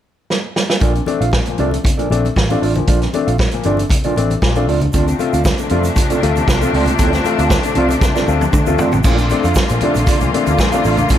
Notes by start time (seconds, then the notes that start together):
0.30 snare
0.56 snare
0.70 snare
0.80 A#1 A#2 F3 D4 F4 A4 D5, kick, closed hi-hat, muted conga
0.95 C4 D4, muted clean electric guitar stroke, closed hi-hat, muted conga
1.06 A3 C4 D4, muted clean electric guitar stroke, closed hi-hat, high conga
1.20 A#1 D4 F4 A4 F5, closed hi-hat
1.32 C4 D4, kick, snare, muted conga
1.46 A#2 F3, muted clean electric guitar stroke, closed hi-hat
1.58 C2 A3 C4 D4 F4 A4 D5, closed hi-hat, high conga
1.71 muted clean electric guitar stroke, closed hi-hat, high conga
1.83 C4 D4, muted clean electric guitar stroke, kick, closed hi-hat, low conga
1.97 A#2 F3 D4 F4 A4 D5, closed hi-hat, muted conga
2.10 A#1 A3 C4 D4, muted clean electric guitar stroke, closed hi-hat, high conga
2.23 muted clean electric guitar stroke, closed hi-hat, high conga
2.35 A1, muted clean electric guitar stroke, kick, snare, muted conga
2.49 A3 C4 D4 F4 A4 F5, closed hi-hat, muted conga, high conga
2.61 A1 D4 F4 A4 D5, open hi-hat
2.75 A#2 F3, muted clean electric guitar stroke, closed hi-hat, low conga
2.87 A#1 A#2 F3 D4 F4 A4 D5, kick, closed hi-hat
3.02 C4 D4, muted clean electric guitar stroke, snare, closed hi-hat
3.13 A3 C4 D4, muted clean electric guitar stroke, closed hi-hat, high conga
3.27 A#1 D4 F4 A4 F5, closed hi-hat
3.38 C4 D4, kick, snare, muted conga
3.51 A#2 F3, muted clean electric guitar stroke, closed hi-hat, muted conga
3.63 G1 A3 C4 D4 F4 A4 D5, closed hi-hat, high conga
3.77 muted clean electric guitar stroke, closed hi-hat, high conga
3.89 C4 D4, muted clean electric guitar stroke, kick, closed hi-hat, muted conga, low conga
4.04 A#2 F3 D4 F4 A4 D5, closed hi-hat, muted conga
4.16 A1 A3 C4 D4, closed hi-hat, high conga
4.30 muted clean electric guitar stroke, closed hi-hat, high conga
4.42 A#1 A#2 F3, muted clean electric guitar stroke, kick, snare, muted conga
4.55 A3 C4 D4 F4 A4 F5, closed hi-hat, high conga
4.68 C#2 C4 D4 F4 A4 D5, open hi-hat
4.81 muted clean electric guitar stroke, closed hi-hat, low conga
4.93 D2 C3 D3 F3 A3 C4 D4 F4 A4 D5, kick, closed hi-hat, muted conga, shaker
5.08 C4 F4, muted clean electric guitar stroke, closed hi-hat, muted conga, shaker
5.19 A3 C4 F4, muted clean electric guitar stroke, closed hi-hat, high conga, shaker
5.33 D2 C4 F4 A4 F5, closed hi-hat, shaker
5.45 muted clean electric guitar stroke, kick, snare, shaker
5.58 D3, muted clean electric guitar stroke, closed hi-hat, shaker
5.69 F2 A3 C4 F4 A4 D5, closed hi-hat, high conga
5.84 muted clean electric guitar stroke, closed hi-hat, high conga, shaker
5.96 C4 F4, muted clean electric guitar stroke, kick, closed hi-hat, low conga, shaker
6.10 D3 C4 F4 A4 D5, closed hi-hat, muted conga, shaker
6.22 D2 A3 C4 F4, muted clean electric guitar stroke, closed hi-hat, high conga
6.36 muted clean electric guitar stroke, closed hi-hat, high conga, shaker
6.48 C2 D3, muted clean electric guitar stroke, kick, snare, muted conga, shaker
6.61 A3 C4 F4 A4 F5, closed hi-hat, muted conga, high conga, shaker
6.73 C#2 C4 F4 A4 D5, open hi-hat
6.86 muted clean electric guitar stroke, closed hi-hat, low conga, shaker
6.99 D2 D3 C4 F4 A4 D5, kick, closed hi-hat, shaker
7.13 C4 F4, muted clean electric guitar stroke, snare, closed hi-hat, muted conga, shaker
7.24 A3 C4 F4, muted clean electric guitar stroke, closed hi-hat, high conga, shaker
7.39 D2 C4 F4 A4 F5, closed hi-hat, shaker
7.50 C4 F4, muted clean electric guitar stroke, kick, snare, muted conga, shaker
7.63 D3, muted clean electric guitar stroke, closed hi-hat, muted conga, shaker
7.75 C2 A3 C4 F4 A4 D5, closed hi-hat, high conga
7.89 muted clean electric guitar stroke, closed hi-hat, high conga, shaker
8.01 C4 F4, kick, snare, muted conga, low conga, shaker
8.15 D3 C4 F4 A4 D5, snare, muted conga, shaker
8.27 D2 A3 C4 F4, muted clean electric guitar stroke, high conga, shaker
8.41 muted clean electric guitar stroke, high tom, high conga, shaker
8.53 D3, muted clean electric guitar stroke, kick, mid tom, muted conga, shaker
8.66 D2 A3 C4 F4 A4 F5, muted conga, high conga, shaker
8.79 C4 F4 A4 D5, floor tom, shaker
8.92 A1, muted clean electric guitar stroke, floor tom, low conga, shaker
9.04 A#1 A#2 D3 F3 A3 A#3 D4 F4 A4 D5, kick, crash, muted conga, shaker
9.18 C4 D4, muted clean electric guitar stroke, closed hi-hat, muted conga, shaker
9.30 A3 C4 D4, muted clean electric guitar stroke, closed hi-hat, high conga, shaker
9.44 F2 D4 F4 A4 F5, closed hi-hat, shaker
9.55 kick, snare, muted conga, shaker
9.69 A#2 F3, muted clean electric guitar stroke, closed hi-hat, shaker
9.81 A3 C4 D4 F4 A4, closed hi-hat, high conga, low conga
9.85 D5
9.94 A#1, muted clean electric guitar stroke, closed hi-hat, high conga, shaker
10.06 C4 D4 F4 A4 D5, kick, closed hi-hat, low conga, shaker
10.21 C2 A#2 F3, muted clean electric guitar stroke, closed hi-hat, muted conga, shaker
10.32 A3 C4 D4, muted clean electric guitar stroke, closed hi-hat, high conga
10.47 D2 D4 F4 A4 D5, closed hi-hat, high conga, shaker
10.58 A#2 F3, muted clean electric guitar stroke, kick, snare, muted conga, shaker
10.72 A3 C4 D4 F4 A4 F5, closed hi-hat, muted conga, high conga, shaker
10.84 A1 C4 D4 F4 A4 D5, open hi-hat, shaker
10.97 muted clean electric guitar stroke, closed hi-hat, low conga, shaker
11.09 A#1 A#2 F3 D4 F4 A4 D5, kick, closed hi-hat, muted conga, shaker